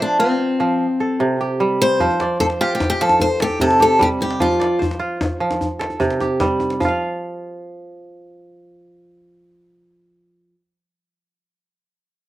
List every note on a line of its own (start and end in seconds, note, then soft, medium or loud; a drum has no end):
0.00 0.59 F3 medium
0.00 0.19 D4 medium
0.00 0.41 G4 medium
0.00 1.18 C5 medium
0.00 0.90 D5 medium
0.19 1.36 C4 medium
0.19 1.71 F4 medium
0.60 0.85 F3 medium
1.00 2.32 A4 medium
1.20 2.05 C3 medium
1.41 2.82 G4 medium
1.60 2.05 G3 medium
1.82 2.40 C5 loud
2.00 3.00 F3 medium
2.00 djembe slap soft
2.00 djembe bass medium
2.10 djembe tone soft
2.20 3.32 D5 medium
2.20 djembe slap medium
2.40 2.46 A4 medium
2.40 3.60 C5 medium
2.40 djembe slap soft
2.40 djembe tone medium
2.40 djembe bass medium
2.50 djembe slap soft
2.61 4.12 F4 medium
2.61 2.74 G4 loud
2.75 2.87 G4 medium
2.80 djembe slap medium
2.80 djembe tone medium
2.80 djembe bass medium
2.90 3.02 G4 medium
3.00 3.25 F3 medium
3.00 3.21 A4 medium
3.00 djembe slap soft
3.09 djembe slap soft
3.09 djembe tone soft
3.20 3.41 C5 loud
3.20 djembe bass medium
3.40 3.60 G4 medium
3.40 4.73 A4 medium
3.40 djembe slap medium
3.50 djembe tone medium
3.60 4.45 C3 medium
3.60 3.81 A4 medium
3.60 djembe bass medium
3.71 djembe slap medium
3.80 5.22 G4 medium
3.80 4.02 A4 medium
3.80 djembe tone medium
3.99 4.45 G3 medium
3.99 4.08 G4 medium
3.99 djembe slap medium
3.99 djembe bass medium
4.21 4.42 G4 medium
4.21 djembe tone medium
4.30 djembe slap medium
4.40 5.39 F3 medium
4.40 4.83 F4 medium
4.40 djembe bass medium
4.51 djembe tone medium
4.60 5.70 D5 medium
4.60 djembe slap medium
4.79 5.98 C5 medium
4.79 djembe tone medium
4.79 djembe bass medium
4.91 djembe slap medium
4.99 6.51 F4 medium
4.99 djembe slap soft
5.21 djembe slap medium
5.21 djembe tone medium
5.21 djembe bass medium
5.40 5.65 F3 medium
5.51 djembe slap soft
5.51 djembe tone soft
5.61 djembe bass medium
5.79 7.11 A4 medium
5.79 djembe slap medium
5.90 djembe tone soft
6.00 6.85 C3 medium
6.00 djembe slap soft
6.00 djembe bass medium
6.10 djembe slap soft
6.20 7.62 G4 medium
6.20 djembe tone medium
6.40 6.85 G3 medium
6.40 djembe slap medium
6.40 djembe bass medium
6.60 djembe tone medium
6.70 djembe slap soft
6.80 10.54 F3 medium
6.80 djembe bass medium
6.85 10.58 F4 medium
6.85 10.61 F5 medium